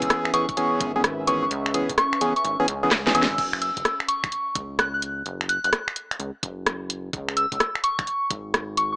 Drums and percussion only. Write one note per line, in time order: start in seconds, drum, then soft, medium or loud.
0.02 kick medium
0.02 closed hi-hat medium
0.10 cross-stick loud
0.10 closed hi-hat medium
0.25 finger snap medium
0.34 closed hi-hat loud
0.49 kick loud
0.49 closed hi-hat soft
0.57 closed hi-hat medium
0.81 kick loud
0.81 closed hi-hat loud
1.04 cross-stick loud
1.04 closed hi-hat medium
1.27 closed hi-hat loud
1.51 closed hi-hat medium
1.66 finger snap medium
1.74 closed hi-hat loud
1.89 kick medium
1.89 closed hi-hat medium
1.98 cross-stick loud
1.98 closed hi-hat medium
2.13 finger snap medium
2.21 closed hi-hat loud
2.36 closed hi-hat soft
2.45 closed hi-hat medium
2.68 closed hi-hat loud
2.91 cross-stick loud
2.91 snare medium
2.91 closed hi-hat medium
3.07 snare medium
3.15 closed hi-hat loud
3.23 snare loud
3.38 kick loud
3.38 closed hi-hat medium
3.38 crash medium
3.53 finger snap medium
3.62 closed hi-hat loud
3.77 kick medium
3.77 closed hi-hat medium
3.85 cross-stick loud
3.85 closed hi-hat medium
4.00 finger snap medium
4.09 closed hi-hat loud
4.24 finger snap medium
4.24 kick loud
4.24 closed hi-hat soft
4.32 closed hi-hat medium
4.55 kick loud
4.55 closed hi-hat loud
4.79 cross-stick loud
4.79 closed hi-hat medium
5.02 closed hi-hat loud
5.26 closed hi-hat medium
5.41 finger snap medium
5.49 closed hi-hat loud
5.64 closed hi-hat medium
5.73 cross-stick loud
5.73 closed hi-hat medium
5.88 finger snap medium
5.96 closed hi-hat medium
6.11 finger snap medium
6.11 closed hi-hat soft
6.20 closed hi-hat medium
6.43 kick loud
6.43 closed hi-hat loud
6.66 cross-stick loud
6.66 closed hi-hat medium
6.90 closed hi-hat loud
7.13 kick loud
7.13 closed hi-hat medium
7.29 finger snap medium
7.37 closed hi-hat loud
7.52 kick medium
7.52 closed hi-hat medium
7.60 cross-stick loud
7.60 closed hi-hat medium
7.75 finger snap medium
7.84 closed hi-hat medium
7.99 finger snap medium
7.99 kick loud
7.99 closed hi-hat soft
8.07 closed hi-hat medium
8.31 kick loud
8.31 closed hi-hat loud
8.54 cross-stick loud
8.54 closed hi-hat medium
8.77 closed hi-hat medium